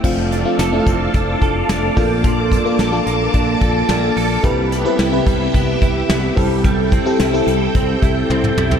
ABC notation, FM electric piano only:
X:1
M:4/4
L:1/16
Q:1/4=109
K:Flyd
V:1 name="FM electric piano"
[A,CDF]2 z [A,CDF] z [A,CDEF]6 z3 [_B,DFA]2- | [_B,DFA]2 z [B,DFA] z [B,DFA]6 z4 z | [CEGB]2 z [CEGB] z [C,EGB]6 z3 [CEGA]2- | [CEGA]2 z [CEGA] z [CEGA]6 z4 z |]